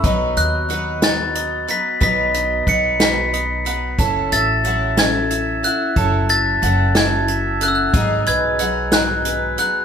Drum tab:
HH |xxxxxx|xxxxxx|xxxxxx|xxxxxx|
SD |---o--|---o--|---o--|---o--|
BD |o-----|o-o---|o-----|o-----|

HH |xxxxxx|
SD |---o--|
BD |o-----|